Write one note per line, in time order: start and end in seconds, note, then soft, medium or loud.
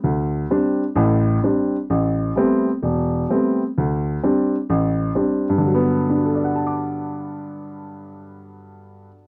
0.04 0.44 D2 medium
0.50 0.82 G3 medium
0.50 0.83 C4 medium
0.50 0.83 D4 medium
0.96 1.36 A1 medium
0.96 1.37 A2 medium
1.43 1.75 G3 medium
1.43 1.76 C4 soft
1.43 1.75 D4 medium
1.90 2.30 A1 medium
2.36 2.68 G3 medium
2.36 2.68 A3 soft
2.36 2.68 B3 soft
2.36 2.69 C4 medium
2.83 3.23 E1 medium
3.29 3.61 G3 medium
3.29 3.61 A3 soft
3.29 3.61 B3 soft
3.29 3.62 C4 medium
3.78 4.17 D2 medium
4.23 4.55 G3 medium
4.23 4.55 C4 soft
4.23 4.55 D4 medium
4.70 5.09 A1 medium
5.15 5.47 G3 soft
5.15 5.47 C4 soft
5.15 5.47 D4 medium
5.50 9.07 G2 medium
5.58 9.15 D3 medium
5.66 9.24 F#3 medium
5.75 9.27 B3 medium
6.10 9.27 D4 soft
6.17 9.27 F#4 soft
6.25 9.27 A4 soft
6.35 9.27 D5 soft
6.44 9.27 F#5 soft
6.56 9.27 A5 soft
6.67 9.27 D6 soft